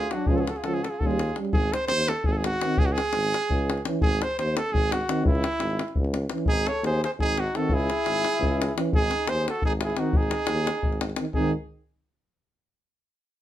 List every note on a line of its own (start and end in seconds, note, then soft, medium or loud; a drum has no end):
0.00 0.16 F4 medium
0.00 0.13 G#4 loud
0.11 0.28 F#3 medium
0.11 0.27 D4 medium
0.11 0.29 F#4 medium
0.11 davul high medium
0.15 0.32 D4 medium
0.26 0.48 C#2 loud
0.26 0.44 F3 medium
0.26 0.43 C#4 medium
0.26 0.38 G#4 medium
0.26 davul low loud
0.31 0.40 F4 medium
0.36 0.46 F#4 medium
0.36 0.51 G#4 medium
0.36 0.42 A4 medium
0.36 davul high soft
0.44 0.52 F4 medium
0.44 davul high medium
0.49 0.61 F#4 medium
0.49 0.58 A4 medium
0.56 0.67 F4 medium
0.56 0.66 G#4 medium
0.56 davul high soft
0.64 0.85 C#2 medium
0.64 0.81 F3 medium
0.64 0.80 C#4 medium
0.64 0.76 F#4 medium
0.64 0.75 A4 medium
0.64 davul high medium
0.74 0.82 F4 medium
0.74 0.85 G#4 medium
0.74 davul high soft
0.80 0.92 F#4 medium
0.80 0.91 A4 medium
0.84 davul high medium
0.90 1.00 F4 medium
0.90 1.01 G#4 medium
0.98 1.29 D#2 medium
0.98 1.05 F#4 medium
0.98 1.08 A4 medium
0.98 davul low medium
1.03 1.17 G3 medium
1.03 1.16 C#4 medium
1.03 1.36 F4 medium
1.07 1.38 G#4 loud
1.11 davul high soft
1.19 davul high medium
1.29 davul high soft
1.36 1.52 G3 medium
1.36 1.52 C#4 medium
1.36 davul high medium
1.45 davul high soft
1.53 1.73 G#1 medium
1.53 1.75 G#4 loud
1.53 davul low loud
1.63 davul high soft
1.74 1.87 C5 loud
1.74 davul high medium
1.81 davul high soft
1.88 2.10 D#2 medium
1.88 2.10 C5 loud
1.88 davul high medium
2.08 2.28 A4 loud
2.08 davul high medium
2.24 2.55 G#1 loud
2.24 2.34 G#4 loud
2.24 davul low medium
2.32 2.39 A4 loud
2.37 2.47 G#4 medium
2.44 2.80 F#4 loud
2.44 davul high medium
2.53 davul high soft
2.61 2.77 D#3 medium
2.61 2.77 C4 medium
2.61 davul high medium
2.77 2.98 C#2 loud
2.77 2.87 G#4 loud
2.77 davul low loud
2.86 2.94 F#4 loud
2.86 davul high soft
2.93 3.85 G#4 loud
2.98 davul high medium
3.05 davul high soft
3.13 3.34 G#1 medium
3.13 davul high medium
3.23 davul high soft
3.34 davul high medium
3.41 davul high soft
3.50 3.78 C#2 medium
3.50 davul low medium
3.70 davul high medium
3.78 davul high soft
3.85 4.01 E3 medium
3.85 4.00 C#4 medium
3.85 davul high medium
4.01 4.22 G#1 loud
4.01 4.24 G#4 loud
4.01 davul low loud
4.11 davul high soft
4.22 4.38 C5 loud
4.22 davul high medium
4.31 davul high soft
4.38 4.58 D#2 medium
4.38 4.59 C5 loud
4.38 davul high medium
4.48 davul high soft
4.57 4.74 A4 loud
4.57 davul high medium
4.66 davul high soft
4.72 5.00 G#1 medium
4.72 4.94 G#4 loud
4.72 davul low loud
4.92 5.25 F#4 loud
4.92 davul high medium
5.01 davul high soft
5.09 5.23 D#3 medium
5.09 5.24 C4 medium
5.09 davul high medium
5.23 5.43 C#2 loud
5.23 6.05 E4 loud
5.23 davul low loud
5.35 davul high soft
5.44 davul high medium
5.53 davul high soft
5.60 5.80 G#1 medium
5.60 davul high medium
5.70 davul high soft
5.79 davul high medium
5.88 davul high soft
5.95 6.25 C#2 medium
5.95 davul low medium
6.04 davul high soft
6.14 davul high medium
6.30 6.47 E3 medium
6.30 6.46 C#4 medium
6.30 davul high medium
6.38 davul high soft
6.46 6.67 G#1 loud
6.46 6.70 D#4 medium
6.46 6.69 G#4 loud
6.46 davul low loud
6.56 davul high soft
6.67 6.84 A4 medium
6.67 6.84 C#5 loud
6.67 davul high medium
6.83 7.02 D#2 loud
6.83 7.03 G#4 loud
6.83 7.03 C5 loud
6.83 davul high medium
6.94 davul high soft
7.04 7.11 G#4 medium
7.04 7.12 C5 loud
7.04 davul high medium
7.12 davul high soft
7.18 7.46 G#1 loud
7.18 7.41 G#4 loud
7.18 davul low medium
7.22 7.40 D#4 medium
7.38 7.60 D#4 medium
7.38 7.57 F#4 loud
7.38 davul high medium
7.47 davul high soft
7.54 7.70 D#3 medium
7.54 7.68 C4 medium
7.54 7.76 A4 loud
7.54 davul high medium
7.58 7.75 F#4 loud
7.68 7.88 C#2 loud
7.68 davul low medium
7.73 8.78 E4 loud
7.73 8.78 G#4 loud
7.80 davul high soft
7.90 davul high medium
7.97 davul high soft
8.05 8.25 G#1 medium
8.05 davul high medium
8.14 davul high soft
8.25 davul high medium
8.34 davul high soft
8.39 8.68 C#2 loud
8.39 davul low medium
8.62 davul high medium
8.77 8.91 E3 medium
8.77 8.91 C#4 medium
8.77 davul high medium
8.91 9.11 G#1 loud
8.91 9.32 D#4 medium
8.91 davul low loud
8.96 9.30 G#4 loud
9.02 davul high soft
9.11 davul high medium
9.20 davul high soft
9.26 9.46 D#2 medium
9.26 9.48 C5 loud
9.26 davul high medium
9.30 9.48 G#4 loud
9.48 9.63 F#4 medium
9.48 9.63 A4 loud
9.48 davul high medium
9.55 davul high soft
9.62 9.91 G#1 loud
9.62 9.73 D#4 medium
9.62 9.73 G#4 loud
9.62 davul low medium
9.81 10.01 E4 medium
9.81 10.01 G#4 loud
9.81 davul high medium
9.90 davul high soft
9.97 10.13 D#3 medium
9.97 10.11 C4 medium
9.97 10.15 D#4 medium
9.97 10.19 F#4 medium
9.97 davul high medium
10.13 10.33 G#1 loud
10.13 11.03 D#4 medium
10.13 davul low loud
10.17 11.05 G#4 loud
10.23 davul high soft
10.31 davul high medium
10.39 davul high soft
10.47 10.69 D#2 loud
10.47 davul high medium
10.58 davul high soft
10.67 davul high medium
10.75 davul high soft
10.83 11.12 G#1 medium
10.83 davul low medium
10.93 davul high soft
11.01 davul high medium
11.10 davul high soft
11.16 11.24 C4 medium
11.16 davul high medium
11.21 11.27 D#3 medium
11.25 davul high soft
11.34 11.53 G#1 loud
11.34 11.53 D#3 medium
11.34 11.52 C4 medium
11.34 11.53 D#4 medium
11.34 11.53 G#4 loud
11.34 davul low medium